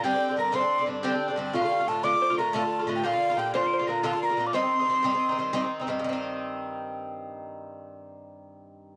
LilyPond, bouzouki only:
\new Staff \with { instrumentName = "Bouzouki" } { \time 9/8 \key c \dorian \tempo 4. = 120 <g, d c' d'>16 <d c' d'>8 <d c' d'>16 <g, d c' d'>8 <g, d c' d'>16 <d c' d'>8 <d c' d'>16 <g, d c' d'>8 <g, d c' d'>16 <d c' d'>8 <d c' d'>16 <g, d c' d'>8 | <a, d a f'>16 <d a f'>8 <d a f'>16 <a, d a f'>8 <a, d a f'>16 <d a f'>8 <d a f'>16 <a, d a f'>8 <a, d a f'>16 <d a f'>8 <d a f'>16 <a, d a f'>8 | <bes, d bes f'>16 <d bes f'>8 <d bes f'>16 <bes, d bes f'>8 <bes, d bes f'>16 <d bes f'>8 <d bes f'>16 <bes, d bes f'>8 <bes, d bes f'>16 <d bes f'>8 <d bes f'>16 <bes, d bes f'>8 | <g, ees c' ees'>16 <ees c' ees'>8 <ees c' ees'>16 <g, ees c' ees'>8 <g, ees c' ees'>16 <ees c' ees'>8 <ees c' ees'>16 <g, ees c' ees'>8 <g, ees c' ees'>16 <ees c' ees'>8 <ees c' ees'>16 <g, ees c' ees'>8 |
<g, ees c' ees'>1~ <g, ees c' ees'>8~ | <g, ees c' ees'>1~ <g, ees c' ees'>8 | }